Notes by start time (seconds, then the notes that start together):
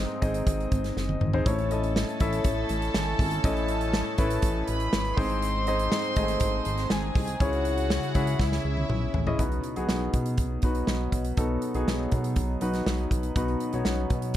Already playing: G#2 G#3 C4 D#4 G#4 D#5
0.21 G#1 C4 D#4 G#4 D#5, kick, closed hi-hat
0.34 closed hi-hat
0.47 G#1, kick, closed hi-hat
0.60 closed hi-hat
0.72 G#1, kick, closed hi-hat
0.84 snare, closed hi-hat
0.97 F#1, snare
1.09 high tom
1.21 G#1, mid tom
1.33 C4 D#4 G#4 C5, floor tom
1.46 A1 A2 A3 C#4 E4 A4 C#5 A5, kick, closed hi-hat
1.58 closed hi-hat
1.71 C#4 E4 A4 D#5, closed hi-hat
1.83 closed hi-hat
1.96 snare
2.09 closed hi-hat
2.20 A1 C#4 E4 A4 E5, kick, closed hi-hat
2.33 closed hi-hat
2.44 A1, kick, closed hi-hat
2.69 A1, closed hi-hat
2.82 closed hi-hat
2.94 G#1, snare
3.19 G#1, kick, open hi-hat
3.31 closed hi-hat
3.44 A1 A2 C#4 E4 A4 D#5, kick, closed hi-hat
3.57 closed hi-hat
3.68 closed hi-hat
3.81 closed hi-hat
3.93 snare
4.18 A1 C#4 E4 A4 B4, kick, closed hi-hat
4.30 closed hi-hat
4.42 A1, kick, closed hi-hat
4.68 A1 B4 B5, closed hi-hat
4.80 closed hi-hat
4.93 G#1, snare
5.05 closed hi-hat
5.17 G#1 G#2 G#3 C4 D#4 G#4 C5 C6, kick, open hi-hat
5.30 closed hi-hat
5.42 closed hi-hat
5.67 C4 D#4 G#4 D#5, closed hi-hat
5.79 closed hi-hat
5.92 snare
6.04 closed hi-hat
6.16 G#1 A3 D#4 G#4 D#5, kick, closed hi-hat
6.22 C4
6.28 closed hi-hat
6.40 G#1, kick, closed hi-hat
6.65 G#1, closed hi-hat
6.78 snare, closed hi-hat
6.90 G#1 G#4 G#5, snare
7.15 C2, kick, open hi-hat
7.28 closed hi-hat
7.40 C#2 C#3 C#4 E4 F#4 G#4 C#5 F#5, kick, closed hi-hat
7.53 closed hi-hat
7.65 closed hi-hat
7.78 closed hi-hat
7.90 snare
8.03 closed hi-hat
8.15 C#2 C#4 E4 G#4 E5, kick, closed hi-hat
8.27 closed hi-hat
8.39 C#2 E4 E5, kick, snare
8.52 snare
8.65 C#2
8.77 high tom
8.89 B1, mid tom
9.14 A1, floor tom
9.27 C#4 E4 G#4 D#5, floor tom
9.39 B1 B2 F#3 B3 D#4 F#4 B4, kick, closed hi-hat
9.52 closed hi-hat
9.64 closed hi-hat
9.76 B1 B3 D#4 F#4 G#4, closed hi-hat
9.88 B1, snare
10.13 B2, kick, closed hi-hat
10.26 closed hi-hat
10.38 B1, kick, closed hi-hat
10.62 B1 B3 D#4 F#4 B4, kick, closed hi-hat
10.75 closed hi-hat
10.87 B1, snare
11.12 B1, kick, closed hi-hat
11.25 closed hi-hat
11.37 B1 B2 B3 D#4 F#4 A4, kick, closed hi-hat
11.62 closed hi-hat
11.74 B1 B3 D#4 F#4 G#4, closed hi-hat
11.87 B1, snare
12.12 B2, kick, closed hi-hat
12.24 closed hi-hat
12.36 B1, kick, closed hi-hat
12.61 B1 B3 D#4 F#4 B4, closed hi-hat
12.73 snare, closed hi-hat
12.86 B1, snare
12.98 closed hi-hat
13.11 B1, kick, closed hi-hat
13.23 closed hi-hat
13.36 B1 B2 B3 C#4 D#4 F#4 B4, kick, closed hi-hat
13.48 closed hi-hat
13.60 closed hi-hat
13.73 B1 B3 D#4 F#4 C#5, closed hi-hat
13.85 B1, snare
14.10 B2, kick, closed hi-hat
14.22 closed hi-hat